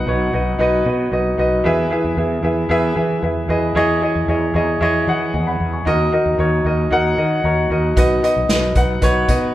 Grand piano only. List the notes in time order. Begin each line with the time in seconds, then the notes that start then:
Already playing: B2 D#4 F#4 B4 D#5 F#5
0.06 D#4 F#4 B4 C#5
0.32 D#4 F#4 B4 D#5
0.59 D#4 F#4 B4 D#5
0.85 D#4 F#4 B4 D#5
1.11 D#4 F#4 B4 D#5
1.37 D#4 F#4 B4 D#5
1.64 E3 E4 G#4 B4 E5
1.90 E4 G#4 B4 E5
2.16 E4 G#4 B4 E5
2.42 E4 G#4 B4 E5
2.69 E4 G#4 B4 E5
2.95 E4 G#4 B4 E5
3.22 E4 G#4 B4 E5
3.48 E4 G#4 B4 D#5
3.75 E3 E4 G#4 C#5 D#5
4.01 E4 G#4 C#5 D#5
4.28 E4 G#4 C#5 D#5
4.54 E4 G#4 C#5 D#5
4.81 E4 G#4 C#5 D#5
5.07 E4 G#4 C#5 F#5
5.34 D#5 G#5
5.47 F#5 B5
5.73 G#5 C#6
5.85 D#3 D#4 F#4 A#4 D#5
6.12 D#4 F#4 A#4 D#5
6.38 D#4 F#4 A#4 C#5
6.64 D#4 F#4 A#4 D#5
6.91 D#4 F#4 A#4 F#5
7.17 D#4 F#4 A#4 D#5
7.43 D#4 F#4 A#4 C#5 A#5
7.70 D#4 F#4 A#4 D#5
7.96 B2 D#4 F#4 B4 D#5
8.22 D#4 F#4 B4 D#5
8.49 D#4 F#4 B4 D#5
8.75 D#4 F#4 B4 F#5
9.01 D#4 F#4 B4 C#5
9.28 D#4 F#4 B4 D#5